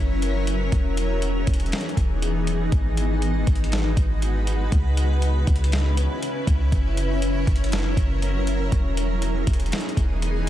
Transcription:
Already playing: 808-style bass F#1, ambient pad F#3 C#4 E4 A#4
0.22 closed hi-hat
0.47 closed hi-hat
0.72 808-style bass E1, ambient pad E3 B3 D#4 G#4, kick, closed hi-hat
0.97 closed hi-hat
1.22 closed hi-hat
1.47 808-style bass E1, kick, closed hi-hat
1.54 closed hi-hat
1.60 closed hi-hat
1.66 closed hi-hat
1.72 snare, closed hi-hat
1.81 closed hi-hat
1.89 closed hi-hat
1.97 808-style bass E1, kick, closed hi-hat
2.22 closed hi-hat
2.47 closed hi-hat
2.72 808-style bass G#1, ambient pad G#3 F#4 B4, kick, closed hi-hat
2.97 closed hi-hat
3.22 closed hi-hat
3.47 808-style bass G#1, kick, closed hi-hat
3.56 closed hi-hat
3.64 closed hi-hat
3.72 snare, closed hi-hat
3.97 808-style bass G#1, kick, closed hi-hat
4.22 closed hi-hat
4.47 closed hi-hat
4.72 808-style bass C#2, ambient pad C#3 C#4 E4, kick, closed hi-hat
4.97 closed hi-hat
5.22 closed hi-hat
5.47 808-style bass C#2, kick, closed hi-hat
5.56 closed hi-hat
5.64 closed hi-hat
5.72 snare, closed hi-hat
5.97 closed hi-hat
6.23 closed hi-hat
6.47 808-style bass C#2, kick, closed hi-hat
6.72 808-style bass F#1, ambient pad F#3 A#4, kick, closed hi-hat
6.97 closed hi-hat
7.22 closed hi-hat
7.47 808-style bass F#1, kick, closed hi-hat
7.56 closed hi-hat
7.64 closed hi-hat
7.72 snare, closed hi-hat
7.97 808-style bass F#1, kick, closed hi-hat
8.22 closed hi-hat
8.47 closed hi-hat
8.72 808-style bass E1, ambient pad E3 B3 D#4 G#4, kick, closed hi-hat
8.97 closed hi-hat
9.22 closed hi-hat
9.47 808-style bass E1, kick, closed hi-hat
9.53 closed hi-hat
9.60 closed hi-hat
9.66 closed hi-hat
9.72 snare, closed hi-hat
9.80 closed hi-hat
9.89 closed hi-hat
9.97 808-style bass E1, kick, closed hi-hat
10.22 closed hi-hat

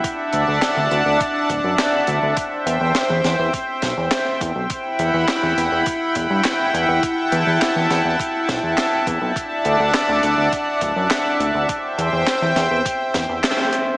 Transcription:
Already playing: analog synth pad E5
0.04 analog synth pad D4 D5 F#5 A5, kick, closed hi-hat
0.33 analog synth bass D2, closed hi-hat
0.48 analog synth bass D2
0.62 snare, clap, closed hi-hat
0.77 analog synth bass D2
0.91 analog synth bass D2, closed hi-hat
1.06 analog synth bass D2
1.20 kick, closed hi-hat
1.50 analog synth bass D1, kick, closed hi-hat
1.64 analog synth bass F#2
1.79 snare, clap, closed hi-hat
2.07 analog synth bass D2, closed hi-hat
2.22 analog synth bass D2
2.37 analog synth pad C5 G5, kick, closed hi-hat
2.66 analog synth bass E2, closed hi-hat
2.81 analog synth bass E2
2.95 snare, clap, closed hi-hat
3.10 analog synth bass E2
3.24 analog synth bass E2, snare, closed hi-hat
3.39 analog synth bass E2
3.54 kick, closed hi-hat
3.82 analog synth bass B1, kick, snare, closed hi-hat
3.97 analog synth bass E2
4.11 snare, clap, closed hi-hat
4.41 analog synth bass E2, kick, closed hi-hat
4.55 analog synth bass B1
4.70 analog synth pad E4 E5 F#5 B5, kick, closed hi-hat
4.99 analog synth bass E2, closed hi-hat
5.14 analog synth bass E2
5.28 snare, clap, closed hi-hat
5.43 analog synth bass E2
5.57 analog synth bass E2, closed hi-hat
5.72 analog synth bass E2
5.86 kick, closed hi-hat
6.15 analog synth bass E1, kick, closed hi-hat
6.30 analog synth bass G2
6.44 snare, clap, closed hi-hat
6.74 analog synth bass E2, closed hi-hat
6.88 analog synth bass E2
7.03 analog synth pad A5, kick, closed hi-hat
7.32 analog synth bass E2, closed hi-hat
7.47 analog synth bass E2
7.61 snare, clap, closed hi-hat
7.76 analog synth bass E2
7.90 analog synth bass E2, snare, closed hi-hat
8.05 analog synth bass E2
8.20 kick, closed hi-hat
8.49 analog synth bass B1, kick, snare, closed hi-hat
8.63 analog synth bass E2
8.78 snare, clap, closed hi-hat
9.07 analog synth bass E2, kick, closed hi-hat
9.21 analog synth bass B1
9.36 analog synth pad D4 D5 F#5, kick, closed hi-hat
9.65 analog synth bass D2, closed hi-hat
9.80 analog synth bass D2
9.94 snare, clap, closed hi-hat
10.09 analog synth bass D2
10.23 analog synth bass D2, closed hi-hat
10.38 analog synth bass D2
10.52 kick, closed hi-hat
10.81 analog synth bass D1, kick, closed hi-hat
10.96 analog synth bass F#2
11.11 snare, clap, closed hi-hat
11.40 analog synth bass D2, closed hi-hat
11.54 analog synth bass D2
11.69 analog synth pad C5 G5, kick, closed hi-hat
11.98 analog synth bass E2, closed hi-hat
12.13 analog synth bass E2
12.27 snare, clap, closed hi-hat
12.42 analog synth bass E2
12.56 analog synth bass E2, snare, closed hi-hat
12.71 analog synth bass E2
12.85 kick, closed hi-hat
13.14 analog synth bass E2, kick, snare, closed hi-hat
13.29 analog synth bass E2
13.44 snare, clap, closed hi-hat
13.72 closed hi-hat

